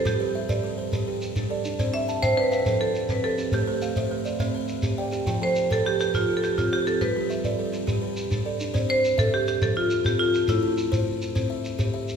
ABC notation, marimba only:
X:1
M:12/8
L:1/16
Q:3/8=138
K:C
V:1 name="Marimba"
G8 z16 | z2 e4 c2 B2 B2 c2 A4 B2 A4 | G8 z16 | z2 c4 A2 G2 G2 F3 A G2 F2 G2 A2 |
B16- B4 z4 | z2 c4 A2 G2 G2 A2 F4 G2 F4 | E8 z16 |]